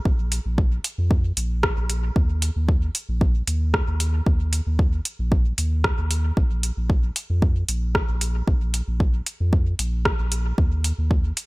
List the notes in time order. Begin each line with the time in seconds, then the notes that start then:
0.05 A#1, kick
0.32 open hi-hat
0.46 A#1
0.58 kick
0.84 open hi-hat
0.98 F2
1.11 kick
1.37 A#1, open hi-hat
1.63 kick, cross-stick
1.77 A#1
1.90 open hi-hat
2.16 D#2, kick
2.42 open hi-hat
2.56 D#2
2.69 kick
2.95 open hi-hat
3.09 A#1
3.21 kick
3.47 D#2, open hi-hat
3.74 kick, cross-stick
3.88 D#2
4.00 open hi-hat
4.26 D#2, kick
4.53 open hi-hat
4.67 D#2
4.79 kick
5.05 open hi-hat
5.19 A#1
5.32 kick
5.58 D#2, open hi-hat
5.84 kick, cross-stick
5.98 D#2
6.11 open hi-hat
6.37 A#1, kick
6.63 open hi-hat
6.77 A#1
6.90 kick
7.16 open hi-hat
7.30 F2
7.42 kick
7.69 A#1, open hi-hat
7.95 kick, cross-stick
8.09 A#1
8.21 open hi-hat
8.48 A#1, kick
8.74 open hi-hat
8.88 A#1
9.00 kick
9.26 open hi-hat
9.40 F2
9.53 kick
9.79 A#1, open hi-hat
10.05 kick, cross-stick
10.19 A#1
10.32 open hi-hat
10.58 D#2, kick
10.84 open hi-hat
10.98 D#2
11.11 kick
11.37 open hi-hat